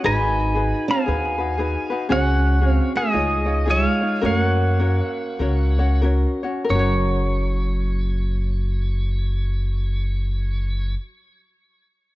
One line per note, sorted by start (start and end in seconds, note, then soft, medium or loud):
0.04 0.71 G#1 loud
0.04 0.84 D#4 medium
0.04 0.54 D#4 medium
0.04 0.56 F#4 loud
0.04 0.54 G#4 medium
0.04 0.55 B4 loud
0.04 0.85 G#5 medium
0.04 0.92 B5 loud
0.55 1.06 D#4 medium
0.55 1.07 F#4 medium
0.55 1.06 G#4 soft
0.55 1.07 B4 medium
0.88 2.06 B3 medium
0.88 2.08 F5 medium
0.88 2.07 G#5 loud
1.06 1.74 D#2 medium
1.06 1.39 D#4 medium
1.06 1.38 F#4 medium
1.06 1.39 G#4 medium
1.06 1.37 B4 medium
1.38 1.58 D#4 soft
1.38 1.58 F#4 medium
1.38 1.58 B4 soft
1.58 1.91 D#4 medium
1.58 1.90 F#4 medium
1.58 1.91 G#4 medium
1.58 1.89 B4 medium
1.90 2.09 D#4 medium
1.90 2.09 F#4 medium
1.90 2.10 B4 medium
2.09 2.78 C#2 loud
2.09 2.61 C#4 medium
2.09 2.66 C#4 medium
2.09 2.61 F#4 medium
2.09 2.60 G#4 medium
2.09 2.62 C#5 medium
2.09 2.92 C#5 medium
2.09 2.67 F#5 medium
2.61 3.13 C#4 medium
2.61 3.13 F#4 medium
2.61 3.11 G#4 medium
2.61 3.14 C#5 medium
2.66 2.91 C4 medium
2.66 2.92 F5 medium
2.95 3.64 G#3 medium
2.95 3.65 G#4 medium
2.95 3.70 D#5 medium
3.12 3.85 C#2 medium
3.12 3.46 D#4 medium
3.12 3.46 F4 medium
3.12 3.47 G#4 medium
3.12 3.45 C#5 medium
3.46 3.65 D#4 soft
3.46 3.66 F4 medium
3.46 3.67 C#5 medium
3.65 4.02 D#4 medium
3.65 4.01 F4 medium
3.65 4.01 G#4 medium
3.65 4.00 C#5 medium
3.70 4.20 G#3 medium
3.70 4.21 C#5 medium
3.70 3.88 E5 medium
3.88 4.26 F5 medium
4.01 4.22 D#4 soft
4.01 4.22 F4 medium
4.01 4.21 C#5 soft
4.21 4.99 F#2 loud
4.21 4.37 A3 medium
4.21 4.79 C#4 medium
4.21 4.81 F#4 medium
4.21 4.79 A#4 medium
4.21 4.81 C#5 medium
4.21 6.00 C#5 medium
4.26 4.38 F5 medium
4.37 6.00 A#3 medium
4.37 6.01 F#5 medium
4.79 5.40 C#4 medium
4.79 5.41 F#4 medium
4.79 5.39 A#4 medium
4.79 5.41 C#5 medium
5.39 6.24 C#2 medium
5.39 5.79 C#4 medium
5.39 5.78 F#4 medium
5.39 5.79 A#4 medium
5.39 5.77 C#5 medium
5.79 6.02 C#4 medium
5.79 6.02 F#4 medium
5.79 6.03 C#5 medium
6.02 6.44 C#4 medium
6.02 6.43 F#4 medium
6.02 6.44 A#4 medium
6.02 6.42 C#5 medium
6.43 6.69 C#4 soft
6.43 6.70 F#4 soft
6.43 6.64 C#5 medium
6.65 10.92 A#4 medium
6.70 10.93 F#1 loud
6.70 10.93 F#3 medium
6.70 10.98 C#4 medium
6.70 10.94 C#5 medium
6.75 11.03 F#4 medium
6.75 11.07 C#5 medium